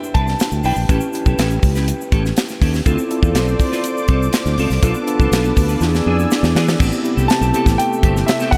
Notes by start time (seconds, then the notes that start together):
Already playing: D4 E4 G4 B4 G5
0.03 muted clean electric guitar stroke, shaker
0.14 C2 D4 E4 B4 A5, kick, closed hi-hat
0.27 muted clean electric guitar stroke, snare, shaker
0.39 muted clean electric guitar stroke, snare, closed hi-hat, shaker
0.51 D2, muted clean electric guitar stroke, shaker
0.64 B1 D4 E4 B4 G5, open hi-hat, shaker
0.76 A#1, muted clean electric guitar stroke, shaker
0.88 A1 C#4 E4 G4 A4 B4, kick, closed hi-hat, shaker
1.00 muted clean electric guitar stroke, shaker
1.13 C#4 E4 G4 B4, muted clean electric guitar stroke, closed hi-hat, shaker
1.26 B1 C#4 G4 A4, kick, shaker
1.38 A1 C#4 G4 A4, snare, closed hi-hat, shaker
1.50 muted clean electric guitar stroke, shaker
1.63 C#2, muted clean electric guitar stroke, kick, open hi-hat, shaker
1.75 C#4 G4 B4, snare, shaker
1.88 muted clean electric guitar stroke, closed hi-hat, shaker
2.00 muted clean electric guitar stroke, shaker
2.12 A1 C#4 G4 A4, kick, closed hi-hat
2.25 muted clean electric guitar stroke, snare, shaker
2.37 muted clean electric guitar stroke, snare, closed hi-hat, shaker
2.48 muted clean electric guitar stroke, snare, shaker
2.61 D#2 C#4 G4 A4, kick, open hi-hat, shaker
2.74 muted clean electric guitar stroke, snare, shaker
2.85 D2 C4 E4 F4 A4 C5 D5 D6, kick, closed hi-hat, shaker
2.98 muted clean electric guitar stroke, shaker
3.09 C4 E4 F4 A4, muted clean electric guitar stroke, closed hi-hat, shaker
3.22 E2 C4 F4 A4, kick, shaker
3.35 B1 C4 F4 A4, snare, closed hi-hat, shaker
3.48 muted clean electric guitar stroke, shaker
3.59 muted clean electric guitar stroke, kick, open hi-hat, shaker
3.72 C4 F4 B4, snare, shaker
3.84 muted clean electric guitar stroke, closed hi-hat, shaker
3.97 muted clean electric guitar stroke, shaker
4.08 C2 C4 F4 A4, kick, closed hi-hat
4.22 muted clean electric guitar stroke, shaker
4.33 muted clean electric guitar stroke, snare, closed hi-hat, shaker
4.46 D2, muted clean electric guitar stroke, snare, shaker
4.58 C#2 C4 F4 A4, open hi-hat, shaker
4.70 C2, muted clean electric guitar stroke, snare, shaker
4.82 B1 B3 D4 F4 A4 B4 A5, kick, closed hi-hat, shaker
4.94 muted clean electric guitar stroke, shaker
5.06 B3 D4 F4 A4, muted clean electric guitar stroke, closed hi-hat, shaker
5.20 C2 D4 F4 A4, kick, shaker
5.32 B1 D4 F4 A4, snare, closed hi-hat, shaker
5.44 muted clean electric guitar stroke, shaker
5.57 D2, muted clean electric guitar stroke, kick, open hi-hat, shaker
5.69 D4 F4 B4, shaker
5.81 E2 B3 D4 E4 F4 D5 G#5 E6, muted clean electric guitar stroke, snare, shaker
5.88 G#4
5.94 muted clean electric guitar stroke, snare, shaker
6.06 F2 B3 D4 G#4
6.19 muted clean electric guitar stroke, shaker
6.31 muted clean electric guitar stroke, snare, shaker
6.43 E2, muted clean electric guitar stroke, snare, shaker
6.55 E3 B3 D4 G#4, snare, shaker
6.67 muted clean electric guitar stroke, snare, shaker
6.79 A1 C3 A3 B3 C4 E4 G4 A4, kick, crash, shaker
6.92 muted clean electric guitar stroke, shaker
7.04 B3 C4 E4 G4, muted clean electric guitar stroke, closed hi-hat, shaker
7.17 C2 C4 G4 A4, shaker
7.28 A5, snare, closed hi-hat, shaker
7.41 B1 C4 G4 A4, shaker
7.53 B3 C4 E4 G4 A4, closed hi-hat, shaker
7.66 A1, muted clean electric guitar stroke, kick, snare, shaker
7.78 G5, closed hi-hat, shaker
7.91 muted clean electric guitar stroke, shaker
8.03 G1 C4 G4 A4, kick, closed hi-hat
8.16 muted clean electric guitar stroke, snare, shaker
8.26 E5, muted clean electric guitar stroke, snare, closed hi-hat, shaker
8.40 C4 G4 A4, snare, shaker
8.51 G1 F#5, muted clean electric guitar stroke, kick, open hi-hat, shaker